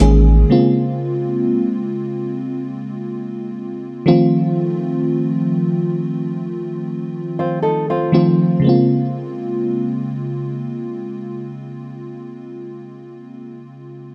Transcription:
0.00 0.44 A1 medium
0.00 0.34 D#3 medium
0.00 0.34 G#3 medium
0.00 0.47 A#3 medium
0.00 0.34 A#3 medium
0.00 0.35 C#4 medium
0.00 0.47 D#4 medium
0.00 0.35 G#4 medium
0.00 closed hi-hat medium
0.50 1.84 C#3 medium
0.50 1.84 G#3 medium
0.50 1.84 A#3 medium
0.50 1.85 C4 medium
0.50 1.85 F4 medium
4.06 5.70 D#3 medium
4.06 5.70 F3 medium
4.06 5.70 A3 medium
4.06 5.71 C4 medium
4.06 5.71 F4 loud
7.39 7.62 C4 medium
7.39 7.61 F4 medium
7.62 7.89 D#4 medium
7.62 7.89 A4 medium
7.90 8.61 C4 medium
7.90 8.61 F4 medium
8.12 8.47 D#3 medium
8.12 8.48 F3 medium
8.12 8.48 A3 medium
8.12 8.48 C4 medium
8.12 8.48 F4 medium
8.60 12.01 C#3 medium
8.60 12.03 G#3 medium
8.64 12.05 A#3 medium
8.64 12.08 C4 medium
8.69 12.10 F4 medium

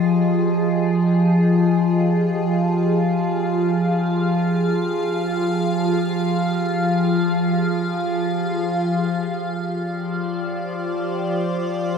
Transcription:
0.00 8.82 F3 medium
0.00 8.86 F4 medium
0.00 8.85 G4 medium
0.00 8.82 G#4 medium
0.00 2.55 D#5 medium
2.21 11.98 F5 medium
8.83 11.98 F3 medium
9.22 11.98 F4 medium
9.61 11.98 G4 medium
9.68 11.98 D5 medium
9.78 11.98 C5 medium

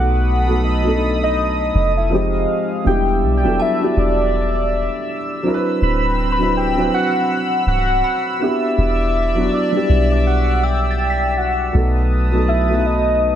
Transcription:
0.00 1.70 B1 loud
0.00 0.42 F#3 medium
0.00 0.43 A3 medium
0.00 0.43 B3 medium
0.00 0.44 D#4 medium
0.00 0.45 A4 medium
0.00 2.09 A4 medium
0.00 0.60 F#5 loud
0.00 2.09 B5 medium
0.00 2.83 D#6 medium
0.46 0.81 F#3 medium
0.46 0.81 A3 medium
0.46 0.82 B3 medium
0.46 0.83 D#4 medium
0.51 0.83 A4 medium
0.64 1.18 D#5 loud
0.84 2.11 F#3 medium
0.84 2.11 A3 medium
0.84 2.12 B3 medium
0.84 0.91 D4 medium
0.88 2.13 A4 medium
0.94 2.12 D#4 medium
1.23 1.93 D#5 loud
1.75 2.46 F1 loud
1.97 2.14 E5 medium
2.10 2.80 F3 medium
2.10 2.81 G#3 medium
2.10 2.85 G#3 medium
2.10 2.81 C4 medium
2.10 2.82 D#4 medium
2.10 2.70 D#5 loud
2.10 2.85 F5 medium
2.14 2.82 G4 medium
2.85 3.24 E1 loud
2.85 3.39 G3 medium
2.85 3.39 B3 medium
2.85 3.40 D4 medium
2.85 3.40 E4 medium
2.85 5.42 D5 medium
2.85 5.42 E5 medium
2.85 3.32 G5 loud
2.85 11.71 E6 medium
2.89 3.41 G4 medium
3.23 3.46 B1 loud
3.37 3.63 G5 loud
3.43 3.59 E1 loud
3.43 3.77 F#3 medium
3.43 3.78 B3 medium
3.43 3.78 D4 medium
3.43 3.79 E4 medium
3.48 3.80 A4 medium
3.60 3.98 E5 loud
3.60 4.61 A5 medium
3.80 5.16 B3 medium
3.80 5.17 D4 medium
3.80 5.17 E4 medium
3.80 5.16 F#4 medium
3.84 5.18 G4 medium
3.97 4.88 E1 loud
3.97 5.42 D5 loud
5.43 6.31 F#3 medium
5.43 6.32 C4 medium
5.43 8.38 C4 medium
5.43 6.33 D4 medium
5.43 6.33 E4 medium
5.43 8.38 B5 medium
5.48 5.54 A#4 medium
5.54 6.37 B4 loud
5.82 6.89 D1 loud
5.82 6.28 B5 loud
6.32 6.55 B5 loud
6.38 6.73 F#3 medium
6.38 6.74 C4 medium
6.38 6.74 D4 medium
6.38 6.75 E4 medium
6.43 6.75 B4 medium
6.57 6.91 G5 loud
6.75 8.12 F#3 medium
6.75 8.12 C4 medium
6.75 8.13 D4 medium
6.75 8.13 E4 medium
6.80 8.14 B4 medium
6.94 7.64 F#5 loud
7.67 8.02 C1 loud
7.67 8.44 F#5 loud
8.04 8.74 B5 medium
8.39 9.28 B3 medium
8.39 9.29 D4 medium
8.39 9.29 E4 medium
8.39 9.28 F#4 medium
8.39 11.71 D5 medium
8.39 11.71 E5 medium
8.39 9.53 E5 loud
8.44 9.30 G4 medium
8.78 9.49 E1 loud
9.35 9.70 F#3 medium
9.35 9.70 B3 medium
9.35 9.71 D4 medium
9.35 9.71 E4 medium
9.40 9.72 F#4 medium
9.54 10.07 D5 medium
9.72 11.08 G3 medium
9.72 11.09 B3 medium
9.72 11.09 D4 medium
9.72 11.10 E4 medium
9.77 11.11 G4 medium
9.89 11.70 B1 loud
10.12 10.18 D5 medium
10.27 10.65 F#5 loud
10.63 11.39 G5 loud
10.63 11.65 E6 medium
10.91 11.87 A6 medium
11.10 12.07 B6 medium
11.38 12.11 F#5 medium
11.73 13.35 B1 loud
11.73 12.27 F#3 medium
11.73 12.28 A3 medium
11.73 12.28 B3 medium
11.73 12.29 D#4 medium
11.73 13.35 B4 medium
11.73 13.35 A5 medium
11.73 13.35 D#6 medium
11.77 12.30 A4 medium
12.31 12.66 F#3 medium
12.31 12.66 A3 medium
12.31 12.67 B3 medium
12.31 12.68 D#4 medium
12.36 12.68 A4 medium
12.48 12.88 E5 loud
12.69 13.35 F#3 medium
12.69 13.35 A3 medium
12.69 13.35 B3 medium
12.69 13.35 D#4 medium
12.73 13.35 F#4 medium
12.86 13.35 D#5 loud

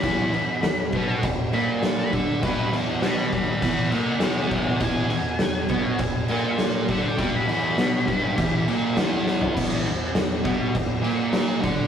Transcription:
0.02 0.32 E2 medium
0.02 0.33 E3 loud
0.02 1.20 B5 loud
0.02 kick loud
0.02 crash medium
0.34 0.58 E2 medium
0.34 crash medium
0.63 0.87 E2 medium
0.63 snare loud
0.63 crash medium
0.92 1.23 B2 medium
0.92 1.24 B3 medium
0.92 kick medium
0.92 crash medium
1.23 1.48 E2 medium
1.23 kick loud
1.23 crash medium
1.53 2.11 A#2 loud
1.53 2.12 A#3 loud
1.53 1.68 B5 loud
1.53 crash medium
1.83 snare loud
1.83 crash medium
1.99 2.13 B5 medium
2.12 2.41 D3 medium
2.12 2.42 D4 loud
2.12 2.42 E5 medium
2.12 kick medium
2.12 snare soft
2.12 crash medium
2.42 2.71 G2 loud
2.42 2.72 G3 loud
2.42 2.72 B4 loud
2.42 kick loud
2.42 crash medium
2.71 3.01 E2 medium
2.71 3.02 E3 loud
2.71 crash medium
3.02 3.31 B2 loud
3.02 3.32 B3 loud
3.02 3.31 G#5 medium
3.02 3.32 B5 loud
3.02 snare loud
3.02 crash medium
3.33 3.62 G2 medium
3.33 3.63 G3 loud
3.33 3.60 G#5 medium
3.33 3.62 B5 medium
3.33 kick medium
3.33 crash medium
3.62 3.91 E2 medium
3.62 3.92 E3 loud
3.62 3.90 G#5 medium
3.62 3.92 B5 medium
3.62 kick loud
3.62 crash medium
3.91 4.21 A#2 loud
3.91 4.22 A#3 loud
3.91 4.19 E5 medium
3.91 4.21 G5 loud
3.91 crash medium
4.20 4.80 E2 loud
4.20 4.81 E3 loud
4.20 4.49 E5 medium
4.20 4.51 G5 loud
4.20 snare loud
4.20 crash loud
4.51 kick medium
4.51 crash medium
4.55 4.81 E5 medium
4.55 4.83 G5 loud
4.80 5.10 E2 loud
4.80 5.11 E3 loud
4.80 kick loud
4.80 crash medium
4.84 6.57 G#5 loud
5.10 5.35 E2 medium
5.10 crash medium
5.39 5.65 E2 medium
5.39 snare loud
5.39 crash medium
5.69 5.99 B2 loud
5.69 6.00 B3 loud
5.69 kick medium
5.69 crash medium
5.99 6.24 E2 medium
5.99 kick loud
5.99 crash medium
6.28 6.88 A#2 loud
6.28 6.89 A#3 loud
6.28 crash medium
6.58 snare loud
6.58 crash medium
6.88 7.19 D3 loud
6.88 7.19 D4 loud
6.88 7.05 E5 loud
6.88 kick medium
6.88 snare soft
6.88 crash medium
7.08 7.35 G5 medium
7.18 7.47 G2 medium
7.18 7.48 G3 loud
7.18 kick loud
7.18 crash medium
7.36 7.50 B5 loud
7.48 7.77 E2 medium
7.48 7.78 E3 medium
7.48 crash medium
7.53 8.66 B5 loud
7.78 8.07 B2 loud
7.78 8.08 B3 loud
7.78 snare loud
7.78 crash medium
8.06 8.36 G2 medium
8.06 8.37 G3 medium
8.06 kick medium
8.06 crash medium
8.37 8.66 E2 loud
8.37 8.67 E3 loud
8.37 kick loud
8.37 crash medium
8.67 8.96 A#2 loud
8.67 8.97 A#3 loud
8.67 crash medium
8.97 9.55 E2 loud
8.97 9.56 E3 loud
8.97 snare loud
8.97 crash loud
9.27 snare medium
9.41 floor tom medium
9.56 9.85 E2 loud
9.56 9.86 E3 loud
9.56 kick loud
9.56 crash loud
9.56 crash medium
9.86 10.10 E2 medium
9.86 crash medium
10.15 10.40 E2 medium
10.15 snare loud
10.15 crash medium
10.44 10.73 B2 medium
10.44 10.74 B3 loud
10.44 kick loud
10.44 crash medium
10.75 10.99 E2 medium
10.75 kick medium
10.75 crash medium
11.02 11.62 A#2 loud
11.02 11.63 A#3 loud
11.02 crash medium
11.33 snare loud
11.33 crash medium
11.62 11.87 D3 loud
11.62 11.87 D4 loud
11.62 kick loud
11.62 snare soft
11.62 crash medium

